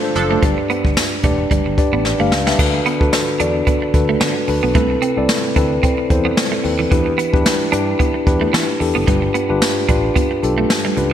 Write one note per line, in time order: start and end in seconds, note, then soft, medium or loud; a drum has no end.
0.00 0.03 D4 medium
0.00 0.21 D4 medium
0.00 0.03 F4 medium
0.00 0.21 F4 medium
0.00 0.03 A4 medium
0.00 0.21 A4 medium
0.00 0.04 C5 medium
0.00 0.22 C5 medium
0.15 0.36 F#1 loud
0.15 0.39 F3 loud
0.15 0.39 D4 loud
0.15 0.39 A4 loud
0.15 muted clean electric guitar stroke soft
0.15 closed hi-hat medium
0.29 0.39 A3 medium
0.29 0.39 D4 medium
0.29 0.39 F4 medium
0.29 0.39 A4 medium
0.29 0.39 C5 medium
0.42 0.54 G1 loud
0.42 1.20 G2 medium
0.42 0.53 G3 medium
0.42 0.99 D4 medium
0.42 0.99 G4 medium
0.42 0.99 B4 medium
0.42 0.99 D5 medium
0.42 kick loud
0.42 closed hi-hat loud
0.58 muted clean electric guitar stroke soft
0.70 0.81 B3 medium
0.70 closed hi-hat medium
0.85 0.94 G1 medium
0.85 kick loud
0.97 snare loud
0.97 closed hi-hat loud
0.97 tambourine medium
1.23 1.44 E1 medium
1.23 1.35 A3 medium
1.23 1.62 D4 medium
1.23 1.62 G4 medium
1.23 1.62 B4 medium
1.23 1.62 D5 medium
1.23 kick medium
1.23 closed hi-hat medium
1.51 1.62 G1 loud
1.51 1.62 G3 medium
1.51 kick medium
1.51 closed hi-hat medium
1.65 1.75 G1 medium
1.65 muted clean electric guitar stroke soft
1.77 2.06 D4 medium
1.77 2.06 G4 medium
1.77 2.06 B4 medium
1.77 2.06 D5 medium
1.77 kick medium
1.77 closed hi-hat medium
1.93 2.13 A1 medium
1.93 2.02 B3 medium
2.05 snare medium
2.19 2.29 G1 medium
2.19 2.29 A3 medium
2.19 2.37 D4 medium
2.19 2.38 G4 medium
2.19 2.38 B4 medium
2.19 2.38 F5 medium
2.32 2.52 C#2 loud
2.32 muted clean electric guitar stroke soft
2.32 snare medium
2.46 2.56 G3 medium
2.46 2.55 D4 medium
2.46 2.55 G4 medium
2.46 2.55 B4 medium
2.46 2.55 E5 medium
2.46 snare medium
2.58 2.79 D2 loud
2.58 3.36 D3 medium
2.58 2.86 D4 medium
2.58 2.70 D4 medium
2.58 2.87 F#4 medium
2.58 2.87 A4 medium
2.58 2.87 B4 medium
2.58 kick loud
2.58 crash medium
2.74 muted clean electric guitar stroke soft
2.86 2.97 B3 medium
2.86 closed hi-hat medium
3.00 3.10 D2 medium
3.00 3.28 D4 medium
3.00 3.29 F#4 medium
3.00 3.29 A4 medium
3.00 3.29 B4 medium
3.00 kick loud
3.13 snare loud
3.13 closed hi-hat medium
3.13 tambourine medium
3.39 3.60 E2 medium
3.39 3.78 D4 medium
3.39 3.51 D4 medium
3.39 3.78 F#4 medium
3.39 3.78 A4 medium
3.39 3.79 D5 medium
3.39 closed hi-hat medium
3.67 3.78 B3 medium
3.67 kick medium
3.67 closed hi-hat medium
3.82 muted clean electric guitar stroke soft
3.94 4.14 D2 medium
3.94 4.32 D4 medium
3.94 4.33 F#4 medium
3.94 4.33 A4 medium
3.94 4.33 B4 medium
3.94 kick loud
3.94 closed hi-hat medium
4.09 4.18 A3 medium
4.21 4.32 D3 loud
4.21 4.32 B3 medium
4.21 snare loud
4.21 closed hi-hat medium
4.21 tambourine medium
4.48 4.59 D2 medium
4.48 4.68 D4 medium
4.48 4.68 F#4 medium
4.48 4.68 A4 medium
4.48 4.68 B4 medium
4.48 muted clean electric guitar stroke soft
4.48 open hi-hat medium
4.63 4.72 B1 medium
4.63 4.72 B3 medium
4.75 4.96 C2 loud
4.75 5.52 C3 medium
4.75 4.86 A3 medium
4.75 5.03 C4 medium
4.75 5.03 E4 medium
4.75 5.04 A4 medium
4.75 5.04 B4 medium
4.75 kick loud
4.75 closed hi-hat loud
4.90 muted clean electric guitar stroke soft
5.02 5.13 C4 medium
5.02 closed hi-hat medium
5.17 5.26 C2 medium
5.17 5.45 C4 medium
5.17 5.45 E4 medium
5.17 5.45 A4 medium
5.17 5.46 D5 loud
5.29 snare loud
5.29 closed hi-hat loud
5.29 tambourine medium
5.56 5.77 D2 medium
5.56 5.94 C4 medium
5.56 5.67 D4 medium
5.56 5.95 E4 medium
5.56 5.95 A4 medium
5.56 5.95 B4 medium
5.56 kick medium
5.56 closed hi-hat medium
5.83 5.94 C4 medium
5.83 kick medium
5.83 closed hi-hat medium
5.98 muted clean electric guitar stroke soft
6.10 6.31 E2 loud
6.10 6.48 C4 medium
6.10 6.49 E4 medium
6.10 6.49 A4 medium
6.10 6.49 C5 medium
6.10 kick loud
6.10 closed hi-hat medium
6.25 6.34 B3 medium
6.37 snare loud
6.37 closed hi-hat medium
6.37 tambourine medium
6.52 6.61 A3 medium
6.64 6.85 D#2 medium
6.64 6.84 C4 medium
6.64 6.84 E4 medium
6.64 6.84 A4 medium
6.64 6.84 B4 medium
6.64 muted clean electric guitar stroke soft
6.64 open hi-hat medium
6.79 6.88 E3 medium
6.91 7.12 E2 loud
6.91 7.02 E3 medium
6.91 7.68 E3 medium
6.91 7.19 D4 medium
6.91 7.19 E4 medium
6.91 7.20 G4 medium
6.91 7.20 B4 medium
6.91 kick loud
6.91 closed hi-hat loud
7.06 muted clean electric guitar stroke soft
7.18 7.29 B3 medium
7.18 closed hi-hat medium
7.33 7.43 E2 loud
7.33 7.61 D4 medium
7.33 7.61 E4 medium
7.33 7.61 G4 medium
7.33 7.62 B4 loud
7.33 kick loud
7.46 snare loud
7.46 closed hi-hat loud
7.46 tambourine medium
7.72 7.93 G2 loud
7.72 8.10 D4 medium
7.72 7.83 D4 medium
7.72 8.11 E4 medium
7.72 8.11 G4 medium
7.72 8.11 B4 medium
7.72 closed hi-hat medium
7.99 8.10 B3 medium
7.99 kick medium
7.99 closed hi-hat medium
8.14 muted clean electric guitar stroke soft
8.26 8.47 E2 medium
8.26 8.65 D4 medium
8.26 8.65 E4 medium
8.26 8.65 G4 medium
8.26 8.65 B4 medium
8.26 kick loud
8.26 closed hi-hat medium
8.41 8.50 A3 medium
8.53 8.65 E3 loud
8.53 8.64 B3 medium
8.53 snare loud
8.53 closed hi-hat medium
8.53 tambourine medium
8.79 8.92 E2 medium
8.79 9.00 D4 medium
8.79 9.00 E4 medium
8.79 9.00 G4 medium
8.79 9.00 A4 medium
8.79 muted clean electric guitar stroke soft
8.79 open hi-hat medium
8.95 9.05 F#1 medium
8.95 9.04 B3 medium
9.07 9.28 G1 loud
9.07 9.85 G2 medium
9.07 9.18 G3 medium
9.07 9.36 D4 medium
9.07 9.36 F4 medium
9.07 9.36 G4 medium
9.07 9.36 B4 medium
9.07 kick loud
9.07 closed hi-hat loud
9.22 muted clean electric guitar stroke soft
9.34 9.45 B3 medium
9.34 closed hi-hat medium
9.49 9.59 G1 loud
9.49 9.77 D4 medium
9.49 9.77 F4 medium
9.49 9.78 G4 medium
9.49 9.78 B4 loud
9.62 snare loud
9.62 closed hi-hat loud
9.62 tambourine medium
9.89 10.09 A1 medium
9.89 9.99 D4 medium
9.89 10.27 D4 medium
9.89 10.27 F4 medium
9.89 10.28 G4 medium
9.89 10.28 B4 medium
9.89 kick medium
9.89 closed hi-hat medium
10.16 10.26 B3 medium
10.16 kick medium
10.16 closed hi-hat medium
10.31 muted clean electric guitar stroke soft
10.43 10.63 B1 medium
10.43 10.81 D4 medium
10.43 10.81 F4 medium
10.43 10.82 G4 medium
10.43 10.82 A4 medium
10.43 closed hi-hat medium
10.58 10.66 A3 medium
10.70 snare loud
10.70 closed hi-hat medium
10.70 tambourine medium
10.85 10.94 G3 medium
10.97 11.13 C#2 medium
10.97 11.13 D4 medium
10.97 11.13 F4 medium
10.97 11.13 G4 medium
10.97 11.13 B4 medium
10.97 muted clean electric guitar stroke soft
10.97 closed hi-hat medium